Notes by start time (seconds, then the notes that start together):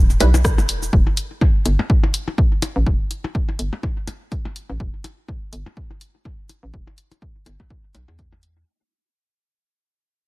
Already playing: D1
0.10 cabasa
0.20 B1 G3 E4 B4, closed hi-hat, percussion blips
0.34 percussion blips, cabasa
0.45 kick, cross-stick, closed hi-hat, cabasa
0.58 E1, percussion blips, cabasa
0.69 closed hi-hat
0.83 cabasa
0.93 E1, kick
1.07 percussion blips
1.17 closed hi-hat
1.41 kick, percussion blips
1.66 G1, closed hi-hat, percussion blips
1.79 percussion blips
1.90 kick
2.03 percussion blips
2.14 closed hi-hat
2.28 percussion blips
2.38 kick
2.62 closed hi-hat, percussion blips
2.76 A1
2.87 E1, kick, percussion blips
3.11 closed hi-hat
3.24 percussion blips
3.35 kick
3.49 percussion blips
3.59 G1, closed hi-hat
3.73 percussion blips
3.83 kick, percussion blips
4.08 closed hi-hat, percussion blips
4.32 kick, closed hi-hat
4.45 percussion blips
4.56 closed hi-hat
4.70 A1, percussion blips
4.80 E1, kick
5.04 closed hi-hat, percussion blips
5.28 kick, percussion blips
5.53 G1, closed hi-hat
5.66 percussion blips
5.77 kick
5.91 percussion blips
6.01 closed hi-hat
6.25 kick, percussion blips
6.49 closed hi-hat, percussion blips
6.63 A1
6.74 E1, kick
6.87 percussion blips
6.98 closed hi-hat
7.11 closed hi-hat, percussion blips
7.22 kick
7.46 G1, closed hi-hat, percussion blips
7.60 kick, percussion blips
7.70 kick, percussion blips
7.95 B1, closed hi-hat, percussion blips
8.08 E2, percussion blips
8.19 kick, closed hi-hat
8.33 percussion blips
8.43 closed hi-hat